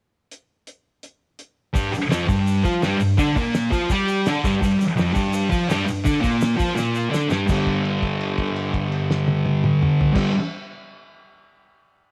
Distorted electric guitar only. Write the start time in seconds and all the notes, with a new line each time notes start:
1.74 G2 G3
1.93 muted distorted electric guitar stroke
2.09 F2 F3
2.27 G2 G3
2.63 F3 F4
2.82 G2 G3
3.00 G2
3.18 D3 D4
3.37 A#2 A#3
3.71 F3 F4
3.90 G3 G4
4.26 D3 D4
4.44 G2 G3
4.61 G2 G3
4.78 muted distorted electric guitar stroke
4.96 F2 F3
5.13 G2 G3
5.49 F3 F4
5.68 G2 G3
5.86 G2
6.03 D3 D4
6.21 A#2 A#3
6.57 F3 F4
6.75 A#2 A#3
7.10 D3 D4
7.28 G2 G3
7.47 G2 D3
7.52 G3
10.13 G2 D3 G3